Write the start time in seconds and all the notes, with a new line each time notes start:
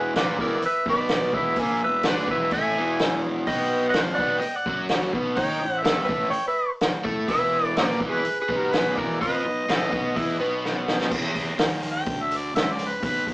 Already playing: E1 E2 E3 G#4 B4
0.14 A#1 A#2 A#3 B4 D5, snare, open hi-hat
0.39 E1 E2 E3 A#4 D5, kick
0.62 B4 E5, muted fingered electric bass stroke, muted overdriven electric guitar stroke, open hi-hat
0.85 B1 B2 B3, kick
0.89 B4 D5
1.09 snare, open hi-hat
1.33 E1 E2 E3 B4 E5, kick
1.56 A#1 A#2 A#3 G#5, kick, open hi-hat
1.62 E5
1.81 E1 E2 B4 E5
2.03 D2 D3 D4 D5, snare, open hi-hat
2.08 B4
2.27 E1 E2 E3 B4 E5, kick
2.51 A1 A2 A3 E5 G#5, kick, open hi-hat
2.76 E1 E2 E3
2.99 snare, open hi-hat
3.46 B1 B2 B3 D#5 G5, kick, open hi-hat
3.89 D#5 F#5
3.94 F2 F3 F4, snare, open hi-hat
4.13 D5 F#5
4.19 B1 B2 B3, kick
4.38 D#5 G5, open hi-hat
4.43 muted fingered electric bass stroke, muted overdriven electric guitar stroke
4.56 D5 F#5
4.66 F#2 F#3 F#4, kick
4.89 snare, open hi-hat
5.13 B1 B2 B3, kick
5.36 D#2 D#3 D#4 C#5 G5, kick, open hi-hat
5.61 A1 A2
5.71 C5
5.80 A4 E5
5.85 G1 G2 G3, snare, open hi-hat
6.03 B4 E5
6.09 A1 A2 A3, kick
6.30 C#5 G5, open hi-hat
6.48 B4 E5
6.81 snare, open hi-hat
7.04 A2 A3 A4, kick
7.28 E1 E2 E3 B4 E5, kick, open hi-hat
7.65 D5
7.76 A#1 A#2 A#3 B4 D5, snare, open hi-hat
8.00 E1 E2 E3, kick
8.09 G#4 B4
8.25 muted fingered electric bass stroke, muted overdriven electric guitar stroke, open hi-hat
8.40 G#4 B4
8.49 B1 B2 B3, kick
8.56 G4 A#4
8.72 G#4 B4, snare, open hi-hat
8.96 E1 E2 E3 A#4 D5, kick
9.21 F2 F3 F4 B4 D#5, kick, open hi-hat
9.45 B1 B2
9.69 A1 A2 A3, snare, open hi-hat
9.91 B1 B2 B3, kick
10.16 E2 E3 E4, kick, open hi-hat
10.39 B1 B2 B3
10.65 snare
10.88 snare
11.01 snare
11.11 E2, kick, crash
11.35 kick, open hi-hat
11.58 D#2, snare, open hi-hat
11.83 open hi-hat
11.92 G5
12.06 D2, kick, open hi-hat
12.22 E5
12.31 open hi-hat
12.37 D5
12.54 C#2 E5, snare, open hi-hat
12.72 D5
12.79 open hi-hat
12.88 B4
13.03 B1 B4, kick, open hi-hat
13.27 kick, open hi-hat